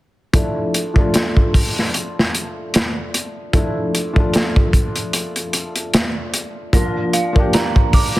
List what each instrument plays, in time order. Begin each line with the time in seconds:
0.33 felt piano F3 A3 D4 E4, kick, closed hi-hat
0.74 closed hi-hat
0.94 felt piano F3 A3, kick
0.98 felt piano D4 F4
1.14 snare, closed hi-hat
1.37 kick
1.54 kick, open hi-hat
1.79 snare
1.94 closed hi-hat
2.19 snare
2.35 closed hi-hat
2.74 snare, closed hi-hat
3.14 closed hi-hat
3.53 felt piano F3 A3 D4 E4, kick, closed hi-hat
3.95 closed hi-hat
4.13 felt piano F3 A3, kick
4.18 felt piano D4 F4
4.34 snare, closed hi-hat
4.56 kick
4.73 kick, closed hi-hat
4.96 closed hi-hat
5.13 closed hi-hat
5.36 closed hi-hat
5.53 closed hi-hat
5.76 closed hi-hat
5.94 snare, closed hi-hat
6.34 closed hi-hat
6.73 felt piano F3 A#3 D4 F4, synth bell D5, kick, closed hi-hat
7.13 synth bell F5, closed hi-hat
7.33 felt piano F3 A#3, kick
7.37 felt piano D4 G4
7.53 synth bell A#5, snare, closed hi-hat
7.76 kick
7.93 synth bell D6, kick, open hi-hat
8.17 snare